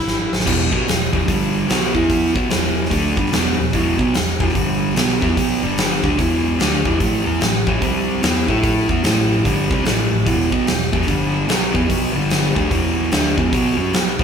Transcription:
Already playing: E4
0.00 snare
0.06 G#1, snare
0.33 G#1, snare
0.40 snare
0.45 E1 E2 B2 E3, kick, crash
0.71 B1 B2 F#3 B3, kick
0.86 E1 E2 B2, snare, open hi-hat
1.12 E1 E2 B2 E3, kick
1.27 G1 G2 D3 G3, kick, open hi-hat
1.68 B1 B2 F#3 B3, snare, open hi-hat
1.94 E2 E3 B3 E4, kick
2.10 kick, open hi-hat
2.35 B1 B2 F#3 B3, kick
2.50 E1 E2 B2 E3, snare, open hi-hat
2.86 snare
2.90 D2 D3 A3 D4, kick, open hi-hat
3.17 G1 G2 D3 G3, kick
3.26 snare
3.32 E1 E2 B2 E3, snare, open hi-hat
3.58 E1 E2 B2
3.72 E1 E2 B2 E3, kick, open hi-hat
3.98 B1 B2 F#3 B3, kick
4.14 E1 E2 B2, snare, open hi-hat
4.40 E1 E2 B2 E3, kick
4.49 snare
4.55 G1 G2 D3 G3, kick, open hi-hat
4.95 B1 B2 F#3 B3, snare, open hi-hat
5.22 E2 E3 B3 E4, kick
5.37 B1 B2 F#3 B3, kick, open hi-hat
5.63 G1 G2 D3 G3
5.78 snare, open hi-hat
6.04 D2 D3 A3 D4, kick
6.19 E1 E2 B2 E3, kick, open hi-hat
6.60 D2 D3 A3 D4, snare, open hi-hat
6.85 E1 E2 B2 E3, kick
7.00 A1 A2 E3 A3, kick, open hi-hat
7.26 E2 E3 B3 E4
7.41 A1 A2 E3, snare, open hi-hat
7.67 A1 A2 E3 A3, kick
7.81 C2 C3 G3 C4, kick, open hi-hat
8.23 E2 E3 B3 E4, snare, open hi-hat
8.48 A2 A3 E4 A4, kick
8.63 kick, open hi-hat
8.89 E2 E3 B3 E4, kick
9.04 A1 A2 E3 A3, snare, open hi-hat
9.45 G1 G2 D3 G3, kick, open hi-hat
9.70 C2 C3 G3 C4, kick
9.85 A1 A2 E3 A3, snare, open hi-hat
10.11 A1 A2 E3
10.25 E1 E2 B2 E3, kick, open hi-hat
10.51 B1 B2 F#3 B3, kick
10.67 E1 E2 B2, snare, open hi-hat
10.92 E1 E2 B2 E3, kick
11.02 snare
11.07 G1 G2 D3 G3, kick, open hi-hat
11.47 B1 B2 F#3 B3, snare, open hi-hat
11.74 E2 E3 B3 E4, kick
11.88 B1 B2 F#3 B3, kick, open hi-hat
12.14 G1 G2 D3 G3
12.30 snare, open hi-hat
12.54 D2 D3 A3 D4, kick
12.70 E1 E2 B2 E3, kick, open hi-hat
13.11 D2 D3 A3 D4, snare, open hi-hat
13.37 E1 E2 B2 E3, kick
13.52 B1 B2 F#3 B3, kick, open hi-hat
13.77 F#2 F#3 C#4 F#4
13.93 B1 B2 F#3, snare, open hi-hat
14.19 B1 B2 F#3 B3, kick

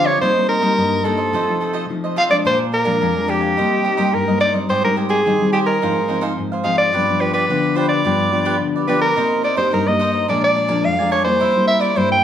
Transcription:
Already playing: D3 F3 C4 D4
0.05 G4 C5 C#5 D5
0.21 C3 G3 A#3 D#4 A#4 C5 D#5
0.36 G3 A#3 D#4
0.48 D#4 A#4 C5 D#5
0.61 G3 A#3 D#4 A#4 C5 D#5
0.77 G2 D#4 A#4 C5 D#5
1.04 G3 A#3 D#4 A4 A#4 C5 D#5
1.17 A#4 C5 D#5
1.33 C3 F3 A3 D#4 F4 A4 C5 D#5
1.48 F3 A3 D#4
1.61 F4 A4 C5 D#5
1.73 F4 A4 C5 D#5
1.89 C3 F3 A3 D#4
2.04 A4 C5 D#5
2.16 F4 A4 C5 D#5 F5
2.29 F3 G#3 D4 A4 C5 D5 D#5
2.45 A#2 D4 A#4 C5 F5 G#5
2.72 D4 A#4 F5 G#5
2.85 F3 G#3 D4 A#4 F5 G#5
3.01 F2 D4 A#4 F5 G#5
3.16 F3 G#3 D4
3.28 D4 G4 A#4 F5 G#5
3.41 A#4 F5 G#5
3.57 C3 G3 A#3 D#4 A#4 C5 D#5
3.84 D#4 A#4 C5 D#5
3.97 G3 A#3 D#4 A#4 C5 D#5
4.14 G2 A#4
4.28 G3 A#3 D#4 A#4 C5 D#5
4.40 D#4 A#4 C5 D5 D#5
4.53 G3 C4 D#4 A#4 C5 D#5
4.69 G#2 G4 C5 D#5 G#5
4.84 G3 C4 D#4 A#4
4.96 G4 C5 D#5 G#5
5.09 G4 G#4 C5 D#5 G#5
5.25 D#3 G3 C4 D#4 G4 C5 D#5 G#5
5.41 G3 C4 D#4
5.53 G4 C5 D#5 G#5
5.66 A#4 C5 D#5 G#5
5.82 G#2 F3 C4 D#4 G#4 C5 F5
6.08 F3 C4 D#4 G#4 C5 F5
6.21 D#4 G#4 C5 F5
6.39 G#2
6.52 G#4 C5 F5
6.64 F3 C4 D#4 G#4 C5 F5
6.77 G#4 C5 D5 F5
6.93 G2 F3 B3 D4 F4 G4 B4 D5
7.09 F3 B3 D4
7.20 F4 G4 B4 D5
7.33 F4 G4 B4 D5
7.49 D3 F3 B3 D4 F4 G4 B4 D5
7.76 F4 G4 B4 C5 D5
7.88 G4 B4 D5
8.05 G2 F3 B3 D4 F4 G4 B4 D5
8.32 F3 B3 D4 F4 G4 B4 D5
8.45 F4 G4 B4 D5
8.61 D3
8.76 G4 B4 D5
8.88 F3 B3 D4 F4 G4 B4 D5
9.01 G4 A#4 B4 D5
9.16 C3 A#3 D#4 G4 A#4 C5 D#5
9.43 D#4 A#4 C5 D5 D#5
9.56 A#3 D#4 G4 A#4 C5 D#5
9.72 G2 D#4 A#4 C5 D#5
9.87 A#3 D#4 G4 D#5
9.99 D#4 A#4 C5 D#5
10.12 A#4 C5 D#5
10.28 A#2 F3 G#3 D4 A#4 D5 G#5
10.44 D5
10.55 D4 A#4 D5 G#5
10.68 F3 G#3 D4 A#4 D5 G#5
10.85 F2 F5
10.99 F3 G#3 D4 A#4 D5 G#5
11.11 D4 A#4 C#5 D5 G#5
11.24 G3 A#3 E4 A#4 C5 D5 G#5
11.40 C3 E4 A#4 C5 E5
11.56 G3 A#3 E4
11.67 E4 A#4 C5 E5
11.80 E4 A#4 C5 D5 E5
11.96 G2 G3 A#3 E4 A#4 C5 E5
12.12 G5

